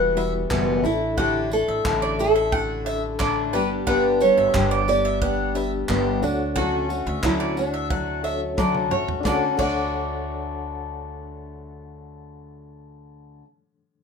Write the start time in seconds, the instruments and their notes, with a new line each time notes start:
Already playing: upright bass E1, steel-string acoustic guitar E3 G3 B3 F#4, reed electric piano G3 B3 E4 F#5, nylon-string guitar B4, mandolin F#5
0.16 reed electric piano G3 B3 E4 F#4 B4, mandolin E5, tambourine
0.50 upright bass F#1, steel-string acoustic guitar E2 B2 E3 G3 B3 F#4, kick, clap
0.83 upright bass A1, steel-string acoustic guitar A3 D4 E4, reed electric piano D4 E4 A4, nylon-string guitar E4, tambourine
1.17 steel-string acoustic guitar A2 D3 A3 D4 E4, nylon-string guitar G4, mandolin F#5, kick
1.51 steel-string acoustic guitar A3 D4 E4, nylon-string guitar A4, tambourine
1.68 upright bass A1, mandolin E5
1.85 upright bass A1, steel-string acoustic guitar A2 D3 A3 D4 E4, kick, clap
2.02 mandolin D5
2.19 steel-string acoustic guitar A3 D4 E4, nylon-string guitar A4, tambourine
2.36 mandolin E5
2.52 steel-string acoustic guitar D3 A3 D4 E4, mandolin F#5, kick
2.85 reed electric piano D4 E4 A4, mandolin E5, tambourine
3.19 upright bass A1, steel-string acoustic guitar A2 D3 A3 D4 E4, mandolin D5, kick, clap
3.52 upright bass G1, steel-string acoustic guitar G3 B3 D4 G4, reed electric piano D4 G4 B4, nylon-string guitar G4, mandolin B4, tambourine
3.87 steel-string acoustic guitar G2 D3 G3 B3 D4 G4, nylon-string guitar B4, mandolin F#5, kick
4.20 steel-string acoustic guitar G3 B3 D4 G4, nylon-string guitar C#5, tambourine
4.37 upright bass G1, mandolin E5
4.54 upright bass G1, steel-string acoustic guitar G2 D3 G3 B3 D4 G4, kick, clap
4.71 mandolin D5
4.88 steel-string acoustic guitar G3 B3 D4 G4, nylon-string guitar D5, tambourine
5.05 mandolin E5
5.21 steel-string acoustic guitar G3 B3 D4 G4, mandolin F#5, kick
5.55 reed electric piano D4 G4 B4, mandolin E5, tambourine
5.89 upright bass G1, steel-string acoustic guitar G2 D3 G3 B3 D4 G4, kick, clap
6.22 upright bass D2, steel-string acoustic guitar A3 F#4, reed electric piano D4 F#4 A4 C#5 F#5, nylon-string guitar D4, tambourine
6.55 steel-string acoustic guitar D3 F#3 A3 C#4 F#4, nylon-string guitar F#4, mandolin F#5, kick
6.89 steel-string acoustic guitar A3 C#4 F#4, tambourine
7.06 upright bass D2, mandolin E5
7.23 upright bass D2, steel-string acoustic guitar D3 F#3 A3 C#4 F#4, nylon-string guitar E4, kick, clap
7.40 mandolin D5
7.56 steel-string acoustic guitar A3 F#4, nylon-string guitar D4, tambourine
7.74 mandolin E5
7.90 steel-string acoustic guitar F#3 A3 F#4, mandolin F#5, kick
8.23 reed electric piano D4 F#4 A4 C#5 E5, mandolin E5, tambourine
8.44 nylon-string guitar C#4
8.57 upright bass D2, steel-string acoustic guitar D3 F#3 A3 F#4, mandolin D5, kick, snare
8.75 high tom
8.91 upright bass A1, steel-string acoustic guitar A3 C#4 F#4, mandolin C#5, mid tom
9.08 floor tom
9.21 steel-string acoustic guitar D3, reed electric piano D4 A4
9.25 upright bass D2, steel-string acoustic guitar A3 C#4 F#4, nylon-string guitar D4, reed electric piano C#5 F#5, mandolin D5, kick, snare
9.54 steel-string acoustic guitar D3, reed electric piano D4 A4
9.59 upright bass D2, steel-string acoustic guitar A3, nylon-string guitar D4, reed electric piano C#5 F#5, mandolin D5, kick, crash
9.63 steel-string acoustic guitar F#4